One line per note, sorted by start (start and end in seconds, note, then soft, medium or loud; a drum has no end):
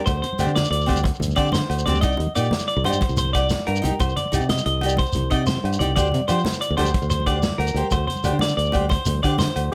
0.06 0.20 D2 medium
0.06 0.21 C5 medium
0.06 kick medium
0.06 closed hi-hat medium
0.06 muted conga medium
0.06 low agogo medium
0.06 shekere medium
0.16 low conga soft
0.22 0.54 C5 medium
0.22 closed hi-hat soft
0.22 low conga medium
0.22 shekere soft
0.33 high conga medium
0.33 low conga soft
0.38 0.46 D2 medium
0.38 0.49 C4 medium
0.38 0.49 D4 medium
0.38 0.49 G4 medium
0.38 0.50 D5 medium
0.38 closed hi-hat soft
0.38 low agogo medium
0.38 shekere medium
0.46 0.66 D3 medium
0.46 low conga soft
0.46 shekere soft
0.56 0.70 D5 medium
0.56 snare medium
0.56 closed hi-hat medium
0.56 muted conga medium
0.56 low conga medium
0.56 shekere soft
0.65 low conga soft
0.65 shekere medium
0.70 1.10 D2 medium
0.70 1.03 D5 medium
0.70 closed hi-hat medium
0.81 low conga soft
0.81 shekere soft
0.86 0.97 C4 medium
0.86 0.98 D4 medium
0.86 0.98 G4 medium
0.86 0.99 D5 medium
0.86 kick medium
0.86 closed hi-hat soft
0.86 low conga medium
0.86 low agogo medium
0.86 shekere soft
0.96 high conga medium
0.96 shekere medium
1.04 muted clean electric guitar stroke medium
1.04 kick medium
1.04 closed hi-hat medium
1.04 muted conga medium
1.14 shekere soft
1.20 1.33 D2 medium
1.20 closed hi-hat soft
1.20 low conga medium
1.20 shekere medium
1.27 high conga medium
1.27 shekere soft
1.36 1.63 D3 medium
1.36 1.47 C4 medium
1.36 1.47 D4 medium
1.36 1.48 G4 medium
1.36 1.52 D5 medium
1.36 1.48 D5 medium
1.36 kick medium
1.36 closed hi-hat soft
1.36 low conga soft
1.36 low agogo medium
1.36 shekere soft
1.47 shekere soft
1.52 1.85 C5 medium
1.52 snare medium
1.52 closed hi-hat medium
1.52 muted conga medium
1.52 low conga medium
1.52 shekere medium
1.61 high conga medium
1.61 low conga soft
1.70 1.83 D2 medium
1.70 closed hi-hat soft
1.70 low agogo medium
1.70 shekere soft
1.78 shekere medium
1.86 2.04 D2 medium
1.86 1.97 C4 medium
1.86 1.97 D4 medium
1.86 1.97 G4 medium
1.86 2.01 D5 medium
1.86 1.98 D5 medium
1.86 closed hi-hat soft
1.86 low conga medium
1.94 high conga medium
1.94 shekere soft
2.01 2.16 C2 medium
2.01 2.13 D#4 medium
2.01 2.14 D5 medium
2.01 2.34 D#5 medium
2.01 muted steel-string acoustic guitar stroke medium
2.01 kick medium
2.01 closed hi-hat medium
2.01 muted conga medium
2.01 low agogo medium
2.01 shekere medium
2.12 shekere soft
2.17 2.26 D#2 medium
2.17 closed hi-hat soft
2.17 low conga medium
2.27 high conga medium
2.35 2.49 A#2 medium
2.35 2.46 D#4 medium
2.35 2.47 G4 medium
2.35 2.67 D5 medium
2.35 2.47 D5 medium
2.35 closed hi-hat soft
2.35 low conga soft
2.35 low agogo medium
2.35 shekere medium
2.44 shekere soft
2.51 snare medium
2.51 closed hi-hat medium
2.51 muted conga medium
2.51 low conga medium
2.59 high conga medium
2.59 shekere medium
2.68 2.84 D5 medium
2.68 closed hi-hat soft
2.76 2.83 C2 medium
2.76 low conga soft
2.84 2.98 G2 medium
2.84 2.96 D#4 medium
2.84 2.96 G4 medium
2.84 3.17 C5 medium
2.84 closed hi-hat soft
2.84 low conga medium
2.84 low agogo medium
2.89 2.97 D5 medium
2.89 high conga medium
2.93 shekere medium
3.01 kick medium
3.01 closed hi-hat medium
3.01 muted conga medium
3.09 3.54 C2 medium
3.09 low conga soft
3.09 shekere soft
3.17 3.33 C5 medium
3.17 closed hi-hat soft
3.17 low conga medium
3.17 shekere medium
3.25 high conga medium
3.25 low conga soft
3.33 3.65 D5 medium
3.33 muted steel-string acoustic guitar stroke medium
3.33 kick medium
3.33 snare soft
3.33 closed hi-hat soft
3.33 low agogo medium
3.33 shekere soft
3.37 3.46 D5 medium
3.50 snare medium
3.50 closed hi-hat medium
3.50 muted conga medium
3.50 low conga medium
3.50 shekere medium
3.60 high conga medium
3.67 3.80 G2 medium
3.67 3.98 A#4 medium
3.67 closed hi-hat soft
3.67 low conga soft
3.67 low agogo medium
3.76 shekere medium
3.82 3.90 C2 medium
3.82 3.93 D#4 medium
3.82 3.94 G4 medium
3.82 muted steel-string acoustic guitar stroke medium
3.82 closed hi-hat medium
3.82 low conga medium
3.82 shekere soft
3.92 high conga medium
4.00 4.13 C2 medium
4.00 4.16 C5 medium
4.00 kick medium
4.00 closed hi-hat medium
4.00 muted conga medium
4.00 low agogo medium
4.00 shekere medium
4.09 shekere soft
4.16 4.48 D5 medium
4.16 closed hi-hat soft
4.16 low conga medium
4.25 high conga medium
4.32 4.39 C2 medium
4.32 4.42 D#4 medium
4.32 4.43 G4 medium
4.32 4.44 D5 medium
4.32 closed hi-hat soft
4.32 low conga soft
4.32 low agogo medium
4.32 shekere loud
4.40 4.60 C3 medium
4.40 shekere soft
4.49 4.65 D#5 medium
4.49 snare medium
4.49 closed hi-hat medium
4.49 muted conga medium
4.49 low conga medium
4.57 high conga medium
4.57 shekere medium
4.66 5.04 C2 medium
4.66 4.97 D#5 medium
4.66 closed hi-hat soft
4.74 low conga soft
4.81 4.92 D#4 medium
4.81 4.93 G4 medium
4.81 closed hi-hat soft
4.81 low conga medium
4.81 low agogo medium
4.86 4.94 D5 medium
4.86 shekere medium
4.97 5.29 C5 medium
4.97 kick medium
4.97 closed hi-hat medium
4.97 muted conga medium
5.06 low conga soft
5.06 shekere soft
5.13 5.28 C2 medium
5.13 closed hi-hat soft
5.13 low conga medium
5.13 shekere loud
5.24 high conga medium
5.24 low conga soft
5.30 5.57 C3 medium
5.30 5.41 D#4 medium
5.30 5.42 D5 medium
5.30 5.46 D#5 medium
5.30 kick medium
5.30 closed hi-hat soft
5.30 low conga soft
5.30 low agogo medium
5.30 shekere soft
5.46 5.78 C5 medium
5.46 snare medium
5.46 closed hi-hat medium
5.46 muted conga medium
5.46 low conga medium
5.46 shekere medium
5.57 high conga medium
5.64 5.77 G2 medium
5.64 closed hi-hat soft
5.64 low conga soft
5.64 low agogo medium
5.73 shekere medium
5.79 5.97 C2 medium
5.79 5.90 D#4 medium
5.79 5.90 G4 medium
5.79 5.94 D5 medium
5.79 5.91 D5 medium
5.79 closed hi-hat soft
5.79 low conga medium
5.96 6.10 D2 medium
5.96 6.06 D4 medium
5.96 6.07 G4 medium
5.96 6.07 C5 medium
5.96 6.27 D5 medium
5.96 kick medium
5.96 closed hi-hat medium
5.96 muted conga medium
5.96 low agogo medium
5.96 shekere medium
6.05 shekere soft
6.12 6.20 C3 medium
6.12 closed hi-hat soft
6.12 low conga medium
6.21 high conga medium
6.28 6.43 F3 medium
6.28 6.38 D4 medium
6.28 6.39 G4 medium
6.28 6.59 C5 medium
6.28 6.40 C5 medium
6.28 closed hi-hat soft
6.28 low conga soft
6.28 low agogo medium
6.28 shekere medium
6.39 shekere soft
6.45 snare medium
6.45 closed hi-hat medium
6.45 muted conga medium
6.45 low conga medium
6.52 high conga medium
6.52 shekere medium
6.61 6.77 D5 medium
6.61 closed hi-hat soft
6.69 6.77 D2 medium
6.69 low conga soft
6.77 6.91 D2 medium
6.77 6.88 D4 medium
6.77 6.88 G4 medium
6.77 7.09 C5 medium
6.77 closed hi-hat soft
6.77 low conga medium
6.77 low agogo medium
6.81 6.89 C5 medium
6.81 high conga medium
6.85 shekere medium
6.94 kick medium
6.94 closed hi-hat medium
6.94 muted conga medium
7.02 7.47 D2 medium
7.02 shekere soft
7.10 7.26 C5 medium
7.10 closed hi-hat soft
7.10 low conga medium
7.10 shekere loud
7.20 high conga medium
7.20 low conga soft
7.26 7.37 D4 medium
7.26 7.37 G4 medium
7.26 7.38 C5 medium
7.26 7.58 D5 medium
7.26 kick medium
7.26 closed hi-hat soft
7.26 low agogo medium
7.26 shekere soft
7.43 snare medium
7.43 closed hi-hat medium
7.43 muted conga medium
7.43 low conga medium
7.43 shekere medium
7.51 high conga medium
7.58 7.72 D2 medium
7.58 7.90 A#4 medium
7.58 closed hi-hat soft
7.58 low conga soft
7.58 low agogo medium
7.67 shekere medium
7.74 7.81 D2 medium
7.74 7.86 G4 medium
7.74 7.86 C5 medium
7.74 closed hi-hat soft
7.74 shekere soft
7.83 high conga medium
7.91 8.05 D2 medium
7.91 8.06 C5 medium
7.91 kick medium
7.91 closed hi-hat medium
7.91 muted conga medium
7.91 low conga soft
7.91 low agogo medium
7.91 shekere medium
8.07 8.39 C5 medium
8.07 closed hi-hat soft
8.07 low conga medium
8.16 high conga medium
8.16 shekere soft
8.24 8.31 D2 medium
8.24 8.34 D4 medium
8.24 8.35 G4 medium
8.24 8.36 C5 medium
8.24 closed hi-hat soft
8.24 low agogo medium
8.24 shekere medium
8.33 8.52 D3 medium
8.39 8.56 D5 medium
8.39 snare medium
8.39 closed hi-hat medium
8.39 muted conga medium
8.39 low conga medium
8.39 shekere soft
8.49 high conga medium
8.49 shekere medium
8.57 8.96 D2 medium
8.57 8.89 D5 medium
8.57 closed hi-hat soft
8.57 shekere soft
8.64 low conga soft
8.64 shekere soft
8.72 8.84 D4 medium
8.72 8.84 G4 medium
8.72 8.85 C5 medium
8.72 kick medium
8.72 closed hi-hat soft
8.72 low conga medium
8.72 low agogo medium
8.72 shekere soft
8.80 high conga medium
8.89 9.21 C5 medium
8.89 kick medium
8.89 closed hi-hat medium
8.89 muted conga medium
8.89 low conga soft
8.89 shekere soft
8.99 low conga soft
9.06 9.20 D2 medium
9.06 closed hi-hat soft
9.06 low conga medium
9.06 shekere loud
9.14 high conga medium
9.23 9.50 D3 medium
9.23 9.33 D4 medium
9.23 9.34 G4 medium
9.23 9.34 C5 medium
9.23 9.38 D5 medium
9.23 kick medium
9.23 closed hi-hat soft
9.23 low agogo medium
9.38 9.70 C5 medium
9.38 snare medium
9.38 closed hi-hat medium
9.38 muted conga medium
9.38 low conga medium
9.38 shekere medium
9.47 high conga medium
9.56 9.69 D2 medium
9.56 closed hi-hat soft
9.56 low conga soft
9.56 low agogo medium